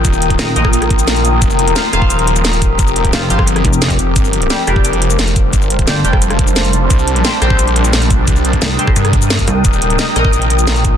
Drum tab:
HH |x-xxx-x-xxxxxxx-|x-xxx-x-xxxxxxx-|x-xxx-x-xxxxxxx-|x-xxx-x-xxxxxxx-|
SH |xx--x-x-x--xxxx-|xx--x-x-x--xxxx-|xx--x-x-x--xxxx-|xx--x-x-x--xxxx-|
SD |----o--r-r--o---|----o-r-----o---|----o--r-r--o---|----o-r-----o---|
BD |o--o---o--o-----|o------o------o-|o--o---o--o--o--|o------o------o-|

HH |x-xxx-x-xxxxxxx-|x-xxx-x-xxxxxxx-|x-xxx-x-xxxxxxx-|x-xxx-x-xxxxxxx-|
SH |xx--x-x-x--xxxx-|xx--x-x-x--xxxx-|xx--x-x-x--xxxx-|xx--x-x-x--xxxx-|
SD |----o--r-r--o---|----o-r-----o---|----o--r-r--o---|----o-r-----o---|
BD |o--o---o--o-----|o------o------o-|o--o---o--o--o--|o------o------o-|